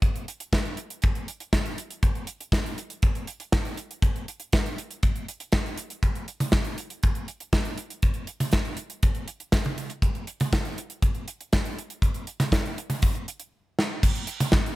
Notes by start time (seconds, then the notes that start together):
0.02 kick, closed hi-hat
0.15 closed hi-hat
0.28 closed hi-hat
0.40 closed hi-hat
0.53 kick, snare, closed hi-hat
0.65 closed hi-hat
0.77 closed hi-hat
0.90 closed hi-hat
1.02 kick, closed hi-hat
1.15 closed hi-hat
1.28 closed hi-hat
1.40 closed hi-hat
1.53 kick, snare, closed hi-hat
1.66 closed hi-hat
1.78 closed hi-hat
1.90 closed hi-hat
2.03 kick, closed hi-hat
2.15 closed hi-hat
2.27 closed hi-hat
2.41 closed hi-hat
2.52 kick, snare, closed hi-hat
2.66 closed hi-hat
2.78 closed hi-hat
2.90 closed hi-hat
3.02 kick, closed hi-hat
3.15 closed hi-hat
3.27 closed hi-hat
3.40 closed hi-hat
3.52 kick, snare, closed hi-hat
3.65 closed hi-hat
3.77 closed hi-hat
3.91 closed hi-hat
4.02 kick, closed hi-hat
4.16 closed hi-hat
4.28 closed hi-hat
4.40 closed hi-hat
4.52 kick, snare, closed hi-hat
4.66 closed hi-hat
4.78 closed hi-hat
4.91 closed hi-hat
5.03 kick, closed hi-hat
5.16 closed hi-hat
5.28 closed hi-hat
5.40 closed hi-hat
5.52 kick, snare, closed hi-hat
5.66 closed hi-hat
5.77 closed hi-hat
5.90 closed hi-hat
6.03 kick, closed hi-hat
6.15 closed hi-hat
6.28 closed hi-hat
6.40 closed hi-hat, high tom
6.52 kick, snare, closed hi-hat
6.65 closed hi-hat
6.78 closed hi-hat
6.90 closed hi-hat
7.03 kick, closed hi-hat
7.15 closed hi-hat
7.28 closed hi-hat
7.40 closed hi-hat
7.53 kick, snare, closed hi-hat
7.65 closed hi-hat
7.78 closed hi-hat
7.90 closed hi-hat
8.02 kick, closed hi-hat
8.14 closed hi-hat
8.27 closed hi-hat
8.40 closed hi-hat, high tom
8.51 kick, snare, closed hi-hat
8.65 closed hi-hat
8.77 closed hi-hat
8.90 closed hi-hat
9.03 kick, closed hi-hat
9.15 closed hi-hat
9.28 closed hi-hat
9.40 closed hi-hat
9.52 kick, snare, closed hi-hat
9.64 closed hi-hat, high tom
9.78 closed hi-hat
9.90 closed hi-hat
10.02 kick, closed hi-hat
10.15 closed hi-hat
10.27 closed hi-hat
10.40 closed hi-hat, high tom
10.53 kick, snare, closed hi-hat
10.65 closed hi-hat
10.78 closed hi-hat
10.90 closed hi-hat
11.02 kick, closed hi-hat
11.15 closed hi-hat
11.28 closed hi-hat
11.41 closed hi-hat
11.53 kick, snare, closed hi-hat
11.65 closed hi-hat
11.79 closed hi-hat
11.90 closed hi-hat
12.02 kick, closed hi-hat
12.14 closed hi-hat
12.27 closed hi-hat
12.40 snare, closed hi-hat, high tom
12.52 kick, snare, closed hi-hat
12.65 closed hi-hat
12.78 closed hi-hat
12.90 closed hi-hat, high tom
13.02 kick, closed hi-hat
13.15 closed hi-hat
13.28 closed hi-hat
13.40 closed hi-hat
13.79 snare
14.03 kick, closed hi-hat, crash
14.15 closed hi-hat
14.27 closed hi-hat
14.40 closed hi-hat, high tom
14.52 kick, snare, closed hi-hat
14.66 closed hi-hat